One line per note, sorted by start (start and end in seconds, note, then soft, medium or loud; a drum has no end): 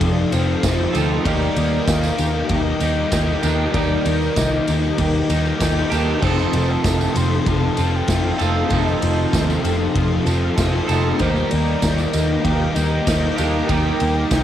0.00 0.23 F1 medium
0.00 0.30 F2 loud
0.00 0.31 C3 loud
0.00 0.94 D#3 medium
0.00 0.31 F3 loud
0.00 0.92 F3 medium
0.00 0.61 F3 loud
0.00 0.63 A3 medium
0.00 0.31 C4 medium
0.00 0.93 C4 loud
0.00 0.32 C4 loud
0.00 0.94 D#4 loud
0.00 0.32 D#4 loud
0.00 0.62 F4 medium
0.00 0.92 A4 loud
0.00 1.21 A4 medium
0.00 0.30 A4 loud
0.00 0.34 D5 loud
0.00 1.21 F5 medium
0.00 1.22 C6 medium
0.00 kick loud
0.00 ride loud
0.31 0.55 F1 medium
0.31 0.61 F2 medium
0.31 0.62 C3 medium
0.31 0.61 F3 medium
0.31 0.62 C4 medium
0.31 0.64 D#4 medium
0.31 0.64 A4 medium
0.31 0.95 C5 medium
0.31 ride medium
0.31 tambourine medium
0.62 0.85 F1 medium
0.62 1.23 F2 medium
0.62 1.24 C3 medium
0.62 1.23 F3 medium
0.62 0.95 C4 medium
0.62 0.95 D#4 medium
0.62 1.25 F4 medium
0.62 0.92 A4 medium
0.62 kick loud
0.62 snare loud
0.62 ride loud
0.62 tambourine loud
0.93 1.17 D2 loud
0.93 1.25 F3 medium
0.93 1.25 A3 medium
0.93 1.24 C4 medium
0.93 1.27 D#4 medium
0.93 1.23 A4 medium
0.93 ride medium
0.93 tambourine medium
1.25 1.48 D#2 medium
1.25 2.49 D#3 loud
1.25 1.86 G3 loud
1.25 1.59 A#3 loud
1.25 1.57 D#4 loud
1.25 1.56 G4 loud
1.25 6.19 A#4 medium
1.25 1.89 D5 loud
1.25 6.19 G5 medium
1.25 6.19 D6 medium
1.25 kick loud
1.25 ride loud
1.42 tambourine soft
1.56 1.79 D#2 loud
1.56 1.87 A#3 medium
1.56 1.88 D#4 medium
1.56 1.89 G4 medium
1.56 ride medium
1.87 2.10 D#2 loud
1.87 3.43 D#3 medium
1.87 2.49 G3 medium
1.87 2.20 A#3 medium
1.87 2.19 D#4 medium
1.87 2.18 G4 medium
1.87 2.51 F5 loud
1.87 kick loud
1.87 snare loud
1.87 ride loud
1.87 tambourine loud
2.03 tambourine medium
2.18 2.41 D#2 medium
2.18 2.49 A#3 medium
2.18 2.51 D#4 medium
2.18 2.50 G4 medium
2.18 ride medium
2.18 tambourine medium
2.49 2.72 D#2 loud
2.49 3.11 D#3 loud
2.49 3.10 G3 loud
2.49 2.82 A#3 loud
2.49 2.81 D#4 loud
2.49 2.78 G4 loud
2.49 3.76 D#5 loud
2.49 kick loud
2.49 ride loud
2.80 3.03 D#2 medium
2.80 3.10 D#3 medium
2.80 3.11 A#3 medium
2.80 3.13 D#4 medium
2.80 3.13 G4 medium
2.80 ride medium
2.80 tambourine medium
3.12 3.34 D#2 medium
3.12 3.72 D#3 medium
3.12 3.73 G3 medium
3.12 3.44 A#3 medium
3.12 3.43 D#4 medium
3.12 3.41 G4 medium
3.12 kick loud
3.12 snare loud
3.12 ride loud
3.12 tambourine loud
3.42 3.65 D#2 medium
3.42 3.73 G3 medium
3.42 3.73 A#3 medium
3.42 3.72 D4 medium
3.42 3.75 D#4 medium
3.42 3.75 G4 medium
3.42 ride medium
3.42 tambourine medium
3.46 3.72 D#3 medium
3.73 3.96 D#2 medium
3.73 4.36 D#3 loud
3.73 4.35 G3 medium
3.73 4.06 A#3 medium
3.73 4.06 D#4 loud
3.73 4.04 G4 loud
3.73 4.38 D5 loud
3.73 kick loud
3.73 ride medium
4.05 4.27 D#2 loud
4.05 4.36 A#3 medium
4.05 4.37 D#4 medium
4.05 4.37 G4 medium
4.05 ride medium
4.05 tambourine soft
4.22 tambourine soft
4.36 4.58 C2 medium
4.36 5.92 D#3 medium
4.36 4.98 G3 medium
4.36 4.69 A#3 medium
4.36 4.69 D#4 medium
4.36 4.66 G4 medium
4.36 5.92 D#5 loud
4.36 kick loud
4.36 snare loud
4.36 ride medium
4.36 tambourine loud
4.67 4.90 D#2 medium
4.67 4.99 A#3 medium
4.67 5.00 D#4 medium
4.67 5.00 G4 medium
4.67 ride medium
4.67 tambourine medium
4.84 tambourine soft
4.98 5.20 D#2 medium
4.98 5.60 D#3 loud
4.98 5.60 G3 loud
4.98 5.32 A#3 loud
4.98 5.31 D#4 loud
4.98 5.29 G4 loud
4.98 kick loud
4.98 ride loud
4.98 tambourine soft
5.30 5.52 D#2 medium
5.30 5.58 D#3 medium
5.30 5.61 A#3 medium
5.30 5.62 D#4 medium
5.30 5.62 G4 medium
5.30 ride medium
5.30 tambourine medium
5.46 tambourine soft
5.59 5.82 D#2 medium
5.59 6.20 D#3 medium
5.59 6.21 G3 medium
5.59 5.93 A#3 medium
5.59 5.93 D#4 medium
5.59 5.90 G4 medium
5.59 kick loud
5.59 snare loud
5.59 ride loud
5.59 tambourine loud
5.77 tambourine soft
5.91 6.14 D#2 medium
5.91 6.22 D#3 medium
5.91 6.21 G3 medium
5.91 6.22 A#3 medium
5.91 6.20 D4 medium
5.91 6.25 D#4 medium
5.91 6.21 G4 medium
5.91 ride medium
5.91 tambourine medium
6.22 6.45 F1 loud
6.22 7.76 F2 medium
6.22 7.76 C3 loud
6.22 6.84 D#3 medium
6.22 6.84 F3 medium
6.22 6.56 C4 loud
6.22 6.55 D#4 loud
6.22 11.16 A4 medium
6.22 6.72 C5 loud
6.22 11.16 F5 medium
6.22 11.16 C6 medium
6.22 kick loud
6.22 crash medium
6.26 6.54 A4 loud
6.39 tambourine soft
6.53 6.76 F1 loud
6.53 8.10 A3 medium
6.53 6.85 C4 medium
6.53 6.86 D#4 medium
6.53 6.87 A4 medium
6.53 ride medium
6.71 7.18 A5 loud
6.84 7.07 F1 loud
6.84 8.40 D#3 medium
6.84 7.46 F3 medium
6.84 7.18 C4 medium
6.84 7.16 D#4 medium
6.84 7.15 A4 medium
6.84 kick loud
6.84 snare loud
6.84 ride loud
6.84 tambourine loud
7.01 tambourine medium
7.15 7.38 F1 medium
7.15 7.46 C4 medium
7.15 7.48 D#4 medium
7.15 7.48 A4 medium
7.15 7.49 C6 loud
7.15 ride medium
7.15 tambourine medium
7.46 7.69 F1 medium
7.46 8.06 F3 loud
7.46 7.78 C4 loud
7.46 7.78 D#4 loud
7.46 8.08 F4 medium
7.46 7.76 A4 loud
7.46 7.97 A5 loud
7.46 kick loud
7.46 ride medium
7.77 8.00 F1 medium
7.77 8.07 F2 medium
7.77 8.07 C3 medium
7.77 8.07 F3 medium
7.77 8.08 C4 medium
7.77 8.09 D#4 medium
7.77 8.10 A4 medium
7.77 ride medium
7.77 tambourine medium
7.96 8.43 G5 loud
8.08 8.31 F1 medium
8.08 8.69 F2 medium
8.08 8.70 C3 medium
8.08 8.69 F3 medium
8.08 8.40 C4 medium
8.08 8.40 D#4 medium
8.08 9.65 F4 medium
8.08 8.38 A4 medium
8.08 kick loud
8.08 snare loud
8.08 ride loud
8.08 tambourine loud
8.39 8.63 F1 medium
8.39 8.68 F3 medium
8.39 9.01 A3 medium
8.39 8.70 C4 medium
8.39 8.72 D#4 medium
8.39 8.71 A4 medium
8.39 8.75 F5 loud
8.39 ride medium
8.39 tambourine medium
8.70 8.93 F1 medium
8.70 10.24 F2 medium
8.70 10.25 C3 loud
8.70 9.32 D#3 medium
8.70 9.31 F3 loud
8.70 9.03 C4 loud
8.70 9.03 D#4 loud
8.70 9.00 A4 loud
8.70 9.34 D#5 medium
8.70 kick loud
8.70 ride medium
8.88 tambourine soft
9.02 9.25 F1 loud
9.02 10.58 A3 medium
9.02 9.32 C4 medium
9.02 9.33 D#4 medium
9.02 9.33 A4 medium
9.02 ride medium
9.32 9.55 D#2 loud
9.32 10.89 D#3 medium
9.32 9.93 F3 medium
9.32 9.65 C4 medium
9.32 9.64 D#4 medium
9.32 9.62 A4 medium
9.32 kick loud
9.32 snare loud
9.32 ride loud
9.32 tambourine loud
9.50 tambourine medium
9.63 9.87 F1 medium
9.63 9.95 C4 medium
9.63 9.96 D#4 medium
9.63 9.96 A4 medium
9.63 ride medium
9.63 tambourine medium
9.95 10.18 F1 medium
9.95 10.56 F3 loud
9.95 10.27 C4 loud
9.95 10.26 D#4 loud
9.95 10.56 F4 medium
9.95 10.24 A4 loud
9.95 kick loud
9.95 ride medium
10.25 10.49 F1 medium
10.25 10.56 F2 medium
10.25 10.56 C3 medium
10.25 10.55 F3 medium
10.25 10.57 C4 medium
10.25 10.59 D#4 medium
10.25 10.59 A4 medium
10.25 ride medium
10.25 tambourine medium
10.57 10.80 F1 medium
10.57 11.18 F2 medium
10.57 11.18 C3 medium
10.57 11.18 F3 medium
10.57 10.90 C4 medium
10.57 10.90 D#4 medium
10.57 11.20 F4 medium
10.57 10.87 A4 medium
10.57 kick loud
10.57 snare loud
10.57 ride loud
10.57 tambourine loud
10.88 11.11 F1 medium
10.88 11.20 F3 medium
10.88 11.20 A3 medium
10.88 11.19 C4 medium
10.88 11.22 D#4 medium
10.88 11.18 A4 medium
10.88 ride medium
10.88 tambourine medium
11.19 11.42 D#2 medium
11.19 12.44 D#3 loud
11.19 11.82 G3 loud
11.19 11.53 A#3 loud
11.19 11.52 D#4 loud
11.19 11.50 G4 loud
11.19 14.43 A#4 medium
11.19 11.52 C5 loud
11.19 14.43 G5 medium
11.19 14.43 A#5 medium
11.19 14.43 D6 medium
11.19 kick loud
11.19 ride medium
11.36 tambourine soft
11.51 11.74 D#2 medium
11.51 11.83 A#3 medium
11.51 11.83 D#4 medium
11.51 11.84 G4 medium
11.51 12.14 D5 medium
11.51 ride medium
11.82 12.04 D#2 loud
11.82 12.45 G3 medium
11.82 12.15 A#3 medium
11.82 12.14 D#4 medium
11.82 12.13 G4 medium
11.82 kick loud
11.82 snare loud
11.82 ride loud
11.82 tambourine loud
11.98 tambourine medium
12.12 12.36 D#2 medium
12.12 12.45 A#3 medium
12.12 12.46 D#4 medium
12.12 12.47 G4 medium
12.12 12.45 D#5 loud
12.12 ride medium
12.12 tambourine medium
12.44 12.67 D#2 medium
12.44 13.07 D#3 loud
12.44 13.06 G3 loud
12.44 12.77 A#3 loud
12.44 12.77 D#4 loud
12.44 12.75 G4 loud
12.44 12.76 F5 loud
12.44 kick loud
12.44 ride loud
12.74 12.98 D#2 medium
12.74 13.05 D#3 medium
12.74 13.08 D#4 medium
12.74 13.09 G4 medium
12.74 13.37 D#5 loud
12.74 ride medium
12.74 tambourine medium
12.78 13.06 A#3 medium
13.06 13.29 D#2 medium
13.06 13.67 D#3 medium
13.06 13.68 G3 medium
13.06 13.39 A#3 medium
13.06 13.39 D#4 medium
13.06 13.38 G4 medium
13.06 kick loud
13.06 snare loud
13.06 ride loud
13.06 tambourine loud
13.36 13.61 D#2 medium
13.36 13.69 G3 medium
13.36 13.67 D4 medium
13.36 13.69 D#4 medium
13.36 13.70 G4 medium
13.36 13.68 F5 loud
13.36 ride medium
13.36 tambourine medium
13.40 13.66 D#3 medium
13.40 13.69 A#3 medium
13.67 13.91 D#2 medium
13.67 14.31 D#3 loud
13.67 14.30 G3 loud
13.67 14.01 A#3 loud
13.67 14.00 D#4 loud
13.67 14.43 G5 loud
13.67 kick loud
13.67 ride medium
13.71 13.99 G4 loud
14.00 14.23 D#2 loud
14.00 14.31 A#3 medium
14.00 14.32 D#4 medium
14.00 14.32 G4 medium
14.00 ride medium
14.31 14.43 C2 loud
14.31 14.43 G3 medium
14.31 14.43 A#3 medium
14.31 14.43 D#4 medium
14.31 14.43 G4 medium
14.31 kick loud
14.31 snare loud
14.31 ride loud
14.31 tambourine loud